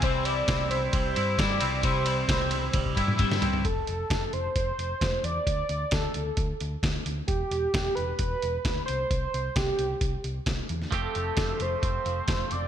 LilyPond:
<<
  \new Staff \with { instrumentName = "Analog synth lead" } { \time 4/4 \key c \major \tempo 4 = 132 c''8 d''4 c''8 c''4 d''4 | c''2.~ c''8 r8 | a'4. c''8 c''4. d''8 | d''4 a'4. r4. |
g'4. b'8 b'4. c''8 | c''4 g'4. r4. | a'4. c''8 c''4. d''8 | }
  \new Staff \with { instrumentName = "Clean electric guitar" } { \time 4/4 \key c \major c8 g8 c'8 e'8 g8 e'8 g8 c'8 | c8 g8 c'8 e'8 g8 e'8 g8 c'8 | r1 | r1 |
r1 | r1 | <f a c' g'>1 | }
  \new Staff \with { instrumentName = "Clean electric guitar" } { \time 4/4 \key c \major <c e g c' e'>8 <g c' e'>8 <e g c' e'>4. <g c' e'>8 <c e g c' e'>8 <g c' e'>8 | <c e g c' e'>8 <g c' e'>8 <e g c' e'>4. <g c' e'>8 <c e g c' e'>8 <g c' e'>8 | r1 | r1 |
r1 | r1 | f8 a8 f8 a8 c'8 f8 a8 c'8 | }
  \new Staff \with { instrumentName = "Picked electric bass" } { \clef bass \time 4/4 \key c \major c,4 c,4 c,8 g,8 g,8 c,8 | c,4 c,4 c,8 g,8 g,8 g,8 | f,,8 f,,8 f,,8 f,,8 f,,8 f,,8 f,,8 e,8 | d,8 d,8 d,8 d,8 d,8 d,8 d,8 d,8 |
e,,8 e,,8 e,,8 e,,8 e,,8 e,,8 d,8 c,8 | c,8 c,8 c,8 c,8 c,8 c,8 c,8 e,8 | f,,8 f,,8 f,,8 f,,8 f,,8 f,,8 f,,8 f,,8 | }
  \new DrumStaff \with { instrumentName = "Drums" } \drummode { \time 4/4 <bd cymr>8 cymr8 <bd cymr sn>8 cymr8 <bd cymr>8 cymr8 <bd cymr sn>8 cymr8 | <bd cymr>8 cymr8 <bd cymr sn>8 cymr8 <bd cymr tommh>16 bd16 <bd cymr>16 toml16 <bd cymr>16 sn16 <cymr tomfh>16 tomfh16 | <hh bd>8 hh8 <hh bd sn>8 hh8 <hh bd>8 hh8 <hh bd sn>8 hh8 | <hh bd>8 hh8 <hh bd sn>8 hh8 <hh bd>8 hh8 <hh bd sn>8 hh8 |
<hh bd>8 hh8 <hh bd sn>8 hh8 <hh bd>8 hh8 <hh bd sn>8 hh8 | <hh bd>8 hh8 <hh bd sn>8 hh8 <hh bd>8 hh8 <hh bd sn>8 hh16 sn16 | <hh bd>8 hh8 <hh bd sn>8 hh8 <hh bd>8 hh8 <hh bd sn>8 hh8 | }
>>